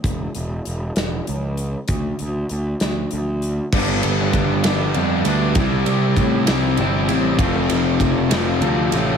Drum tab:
CC |------|------|x-----|------|
RD |------|------|-xxxxx|xxxxxx|
HH |xxxxxx|xxxxxx|------|------|
SD |---o--|---o--|---o--|---o--|
BD |o-----|o-----|o-o---|o-o---|

CC |------|
RD |xxxxxx|
HH |------|
SD |---o--|
BD |o-o---|